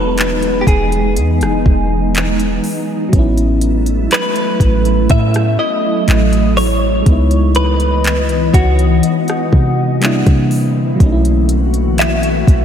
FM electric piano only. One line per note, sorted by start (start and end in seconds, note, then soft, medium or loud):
0.00 3.07 F#3 medium
0.00 3.09 G#3 medium
0.00 3.10 B3 medium
0.00 3.12 D#4 medium
3.09 7.00 F#3 medium
3.09 7.02 B3 medium
3.16 7.04 C#4 medium
3.16 7.05 E4 medium
7.02 9.95 G#3 medium
7.02 9.97 B3 medium
7.09 9.99 D#4 medium
7.09 10.00 E4 medium
10.00 10.99 G3 medium
10.00 11.00 A#3 medium
10.00 11.01 D4 medium
10.05 11.02 E4 medium
10.96 12.65 F#3 medium
10.96 12.65 A3 medium
11.02 12.65 C#4 medium
11.02 11.09 D#4 medium
11.12 12.65 E4 medium